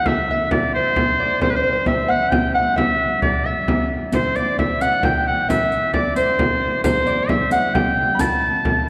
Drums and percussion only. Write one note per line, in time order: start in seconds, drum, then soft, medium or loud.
0.06 frame drum medium
0.51 frame drum medium
0.96 frame drum medium
1.20 frame drum soft
1.41 frame drum medium
1.86 frame drum medium
2.32 frame drum medium
2.55 frame drum soft
2.78 frame drum medium
3.22 frame drum medium
3.68 frame drum medium
3.91 frame drum soft
4.12 riq medium
4.12 frame drum medium
4.36 riq soft
4.59 frame drum medium
4.81 riq soft
5.03 frame drum medium
5.27 frame drum soft
5.50 riq medium
5.50 frame drum medium
5.72 riq soft
5.94 frame drum medium
6.16 riq soft
6.39 frame drum medium
6.61 frame drum soft
6.84 riq medium
6.84 frame drum medium
7.07 riq soft
7.29 frame drum medium
7.51 riq soft
7.75 frame drum medium
7.98 frame drum soft
8.19 riq medium
8.19 frame drum medium
8.65 frame drum medium